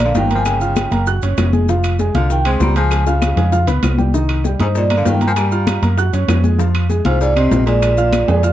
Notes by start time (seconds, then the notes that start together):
Already playing: A#1
0.00 A#3 A#4 A#5, high bongo, high conga, high timbale, claves
0.05 D3 F5
0.14 G1 D#3 G5, high bongo, low bongo, high conga, low timbale, maracas
0.30 A#3 A#4 A#5, high timbale, maracas
0.35 F3 G#5
0.45 C#3 G5, high bongo, high conga, high timbale, claves, maracas
0.61 F4 F5 F6, high bongo, high conga, maracas
0.76 high bongo, high conga, high timbale, low timbale, claves, maracas
0.91 F#1 A#3 A#4 A#5, high bongo, high conga, high timbale, maracas
1.07 F#4 F#5 F#6, high bongo, high conga, maracas
1.22 F#1 C#4 C#5 C#6, high bongo, high conga, high timbale, maracas
1.37 F1, high bongo, low bongo, high conga, high timbale, low timbale, claves, maracas
1.53 G#3 G#4 G#5, high conga, maracas
1.69 F3 F4 F5, high bongo, high conga, maracas
1.84 high bongo, high conga, high timbale, claves, maracas
1.99 G#3 G#4 G#5, high bongo, high conga, low timbale, maracas
2.14 C2 D3 F4 F5 F6, high bongo, high conga, high timbale, maracas
2.30 D#3 G5, high bongo, high conga, maracas
2.45 G#3 C4 C5 C6, high bongo, high conga, high timbale, claves
2.60 C#2 G3 A#5, high bongo, low bongo, high conga, low timbale, maracas
2.75 F3 G#3 G#4 G#5, high conga, high timbale, maracas
2.91 high bongo, high conga, high timbale, claves, maracas
3.07 C#3 F4 F5 F6, high bongo, high conga, maracas
3.22 high bongo, high conga, high timbale, low timbale, claves, maracas
3.36 F2 G#3 G#4 G#5, low bongo, high conga, high timbale, maracas
3.52 F4 F5 F6, low bongo, high conga, maracas
3.67 C#2 B3 B4 B5, low bongo, high conga, high timbale, maracas
3.82 C2, low bongo, high conga, high timbale, low timbale, claves, maracas
3.98 G3 G4 G5, low bongo, high conga, maracas
4.14 D#3 D#4 D#5, high bongo, maracas
4.29 high bongo, high conga, high timbale, claves
4.44 G3 G4 G5, high bongo, high conga, low timbale, maracas
4.59 G2 G#2 D#4 C5 D#5 D#6, high bongo, high conga, high timbale, maracas
4.75 A#2 D5, high bongo, high conga, maracas
4.90 A#3 A#4 A#5, high bongo, high conga, high timbale, claves
4.97 D3 F5
5.05 G2 D#3 G5, high bongo, low bongo, high conga, low timbale, maracas
5.21 A#3 A#4 A#5, high conga, high timbale, maracas
5.27 F3 G#5
5.36 G3 A#5, high bongo, high conga, high timbale, claves, maracas
5.51 F4 F5 F6, high bongo, high conga, maracas
5.67 high bongo, high conga, high timbale, low timbale, claves, maracas
5.82 F#2 A#3 A#4 A#5, high bongo, high conga, high timbale, maracas
5.98 F#4 F#5 F#6, high bongo, high conga, maracas
6.13 F#2 C#4 C#5 C#6, high bongo, high conga, high timbale, maracas
6.28 F2, high bongo, low bongo, high conga, high timbale, low timbale, claves, maracas
6.44 G#3 G#4 G#5, high conga, maracas
6.58 F3 F4 F5, high bongo, high conga, maracas
6.74 high bongo, high conga, high timbale, claves
6.89 G#3 G#4 G#5, high bongo, high conga, low timbale, maracas
7.05 C2 G#2 F4 C5 F5 F6, high bongo, high conga, high timbale, maracas
7.21 G#2 D5, high bongo, high conga, maracas
7.36 C3 C4 C5 D#5 C6, high bongo, high conga, high timbale, claves
7.51 A#1, high bongo, low bongo, high conga, low timbale, maracas
7.66 A#2 G#3 G#4 D5 G#5, high conga, high timbale, maracas
7.82 high bongo, high conga, high timbale, claves, maracas
7.97 F4 F5 F6, high bongo, high conga, maracas
8.13 high bongo, high conga, high timbale, low timbale, claves, maracas
8.28 F2 G#3 G#4 G#5, high bongo, high conga, high timbale, maracas
8.43 F4 F5 F6, high bongo, high conga, maracas